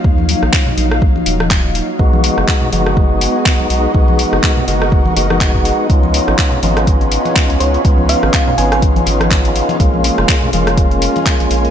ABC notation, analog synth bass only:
X:1
M:4/4
L:1/16
Q:"Swing 16ths" 1/4=123
K:Dbmix
V:1 name="Analog synth bass" clef=bass
E,,2 z B,,, z2 B,,,3 z E,,,4 z2 | =B,,,2 z ^F,,, z2 F,,,4 z3 B,,, B,,, z | =B,,,2 z ^F,,, z2 F,,,3 z F,,,4 z2 | D,,2 z A,,, z2 A,,,4 z3 D,, D,, z |
D,,2 z A,,, z2 A,,,3 z A,,,4 z2 | B,,,2 z F,,, z2 F,,,4 z3 B,,, B,,, z |]